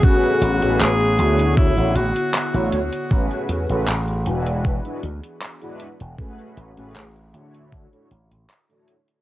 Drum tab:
HH |xxxxxxxxxxxxxxxx|xxxxxxxxxxxxxxxx|xxxxxxxxxxxxxxxx|
CP |----x-------x---|----x-------x---|----x-------x---|
BD |o-------o-------|o-------o-------|o-------o-------|